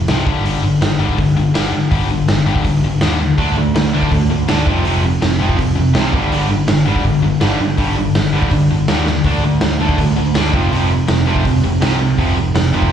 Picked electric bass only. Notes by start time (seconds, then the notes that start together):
0.09 C2
0.27 G1
0.45 G1
0.64 G1
0.82 G1
1.00 G1
1.19 G1
1.37 G1
1.55 G1
1.73 G2
1.92 G1
2.29 G1
2.47 G1
2.65 G1
2.84 G1
3.02 D#2
3.38 D2
3.58 D2
3.76 D2
3.94 D2
4.12 D2
4.31 D2
4.50 D2
4.67 F1
4.86 F1
5.23 F1
5.40 F1
5.59 F1
5.77 F1
5.96 C2
6.14 G1
6.32 G1
6.51 G1
6.69 G1
6.88 G1
7.05 G1
7.24 G1
7.43 G1
7.61 G2
7.79 G1
8.16 G1
8.34 G1
8.52 G1
8.71 G1
8.89 D#2
9.25 D2
9.44 D2
9.62 D2
9.80 D2
9.98 D2
10.18 D2
10.36 D2
10.54 F1
10.72 F1
11.09 F1
11.28 F1
11.45 F1
11.64 F1
11.82 C2
12.19 F1
12.37 F1
12.55 F1
12.73 F1